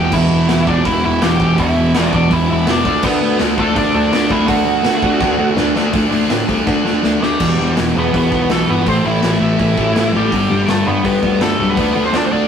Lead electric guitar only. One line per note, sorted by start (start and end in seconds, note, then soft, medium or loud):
0.00 0.11 G4 medium
0.00 0.15 G5 loud
0.13 0.64 E4 medium
0.13 0.70 E5 loud
0.67 0.84 D4 medium
0.67 0.87 D5 medium
0.85 1.02 E4 medium
0.85 1.04 E5 loud
1.05 1.21 E4 medium
1.05 1.24 E5 loud
1.22 1.56 G4 medium
1.22 1.59 G5 loud
1.60 2.10 E4 medium
1.60 2.11 E5 loud
2.14 2.30 D4 medium
2.14 2.34 D5 loud
2.33 2.49 E4 medium
2.33 2.51 E5 loud
2.53 2.68 E4 medium
2.53 2.72 E5 loud
2.71 3.03 D4 medium
2.71 3.04 D5 medium
3.04 3.38 B3 medium
3.04 3.38 B4 loud
3.60 3.76 A3 medium
3.60 3.78 A4 medium
3.77 3.93 D4 medium
3.77 3.94 D5 loud
3.95 4.28 D4 medium
3.95 4.32 D5 loud
4.31 4.48 E4 medium
4.31 4.48 E5 medium
4.47 5.53 F#4 medium
4.47 5.54 F#5 medium
7.23 7.74 G3 medium
7.23 7.74 G4 medium
7.98 8.14 B3 medium
7.98 8.14 B4 medium
8.16 8.49 B3 medium
8.16 8.52 B4 loud
8.51 8.68 A3 medium
8.51 8.69 A4 medium
8.70 8.86 B3 medium
8.70 8.88 B4 medium
8.89 9.05 C4 medium
8.89 9.06 C5 loud
9.05 9.39 E4 medium
9.05 9.43 E5 loud
9.44 10.12 E4 medium
9.44 10.12 E5 loud
10.16 10.66 G3 medium
10.16 10.71 G4 medium
10.69 10.86 A3 medium
10.69 10.87 A4 loud
10.87 11.04 B3 medium
10.87 11.04 B4 medium
11.05 11.39 B3 medium
11.05 11.43 B4 loud
11.41 11.67 A3 medium
11.41 11.70 A4 medium
11.70 12.03 B3 medium
11.70 12.03 B4 loud
12.05 12.14 C4 medium
12.05 12.15 C5 medium
12.16 12.25 D4 medium
12.16 12.25 D5 loud
12.26 12.32 C5 medium
12.31 12.48 D4 medium
12.31 12.48 D5 loud